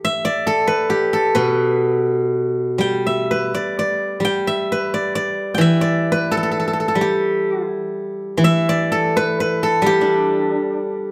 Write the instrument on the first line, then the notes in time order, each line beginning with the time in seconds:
guzheng
Already playing: G4 A4 B4
0.05 E5
0.25 D5
0.47 A4
0.67 B4
0.90 G4
1.13 A4
1.35 B2 B4
2.78 G3 G5
3.07 E5
3.31 B4
3.54 D5
3.79 D5
4.20 G3
4.25 G5
4.47 E5
4.72 B4
4.94 D5
5.15 D5
5.54 E3 G5
5.61 E5
5.81 D5
6.12 B4
6.31 A4
6.37 A4
6.43 A4
6.51 A4
6.60 A4
6.67 A4
6.73 A4
6.80 A4
6.88 A4
6.95 G3
7.01 G4
7.69 E4
8.37 E3
8.44 E5
8.69 D5
8.92 A4
9.17 B4
9.40 B4
9.63 A4
9.82 G3
9.86 G4
10.01 D4